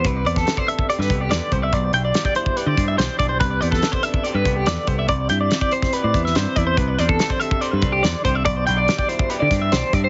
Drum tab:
HH |x-x-x-x-x-x-x-x-|x-x-x-x-x-x-x-x-|x-x-x-x-x-x-x-x-|x-x-x-x-x-x-x-x-|
SD |---oo----o--o---|----o-------o---|---oo-------o---|----o--o---oo---|
BD |o--o-o-o--o---o-|o----o-o--o---o-|o--o-o-o--o---o-|o----o-o--o---o-|

HH |x-x-x-x-x-x-x-x-|x-x-x-x-x-x-x-x-|
SD |----o-------o---|----o-----o-o---|
BD |o--o-o-o--o---o-|o----o-o--o---o-|